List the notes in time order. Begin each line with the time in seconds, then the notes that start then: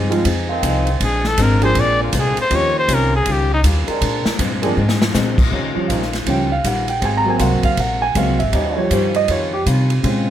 Already playing: G2 F3 C4 D#4 G#4
0.10 F3 G#3 C4 D#4 F4, ride
0.25 F2 F3 C4 D#4 G#4, kick, ride
0.49 D#3 G#3 C4 F4
0.63 C2 F3 C4 D#4 G#4, kick, hi-hat pedal, ride
0.87 ride
1.00 A#1 A#2 G#3 C4 D4 G#4, kick, ride
1.24 A4, snare
1.38 G#1 A#2 G#3 C4 D4, kick, hi-hat pedal, ride
1.42 A#4
1.61 F3 A#3 C4 D4 G#4 C5, ride
1.75 A#1 A#2 G#3 C4 D4, kick, ride
1.80 D5
1.99 D3 A#3 C4 G#4
2.03 F4
2.13 C2 A#2 G#3 C4 D4, kick, hi-hat pedal, ride
2.19 G#4
2.37 muted upright bass stroke, ride
2.41 C5
2.50 D#2 D#3 F3 G3 A#3 C#4 D#4 F4 G4, kick, ride
2.56 C#5
2.79 C5
2.88 C2 D#3 G3 C#4 F4, kick, hi-hat pedal, ride
2.94 A#4
3.16 G#4
3.26 C#2 D#3 G3 C#4 F4, kick, ride
3.32 G4
3.54 D#4
3.63 D#2 D#3 G3 C#4 F4, kick, hi-hat pedal, ride
3.87 G#3 C4 D4 A#4, muted upright bass stroke, ride
4.01 A#2 G#3 C4 D4, kick, ride
4.25 muted upright bass stroke, snare
4.39 G2 A#2 G#3 C4 D4, kick, hi-hat pedal, ride
4.61 F3 G#3 A#3 C4 D4 G#4 A#4, ride
4.77 G#2 A#2 G#3 C4 D4
4.89 snare
5.02 snare
5.14 A#2 G#3 C4 D4, snare, hi-hat pedal
5.38 kick, crash
5.50 D#2 D#3 F3 G3 C#4 D#4 F4 G4, kick
5.74 F3 G3 C#4, muted upright bass stroke
5.88 A#1 D#3 F3 G3 C#4 D#4 F4, kick, hi-hat pedal, ride
6.03 snare
6.13 snare, ride
6.26 C#2 D#3 F3 G3 C#4 F4 G5, kick, ride
6.52 F5
6.64 A#1 D#3 G3 C#4 F4 F#5, kick, hi-hat pedal, ride
6.88 G5, ride
7.00 G#1 F#3 G#3 A#3 C4 F#4 G#4 A#4, kick, ride
7.05 G#5
7.17 A#5
7.25 F#3 A#3 C4
7.30 G#5
7.38 C2 F#3 G#3 A#3 C4 F4 F#4 A#4, kick, hi-hat pedal, ride
7.42 F#5
7.52 G#1
7.63 F#1 F5, kick, ride
7.77 A#1 G#3 C4 F#4 A#4 F#5, kick, ride
8.02 G#5
8.15 C#2 F#3 G#3 A#3 C4 F#4 A#4 F5, kick, hi-hat pedal, ride
8.27 C2
8.39 G#1 E5, ride
8.51 D#2 D#3 F3 G3 C#4 D#4 G4 D#5, kick, ride
8.56 F4
8.76 F3 G3 C#5
8.90 G2 D#3 F3 G3 C#4 D#4 F4 C5, kick, hi-hat pedal, ride
9.14 D#5, ride
9.28 F2 D#3 G3 C#4 F4 C#5, kick, ride
9.53 G4
9.66 C3 D#3 G3 C#4 F4, kick, hi-hat pedal, ride
9.90 ride
10.03 A#2 C#3 G#3 C4 C#4 F4, kick, ride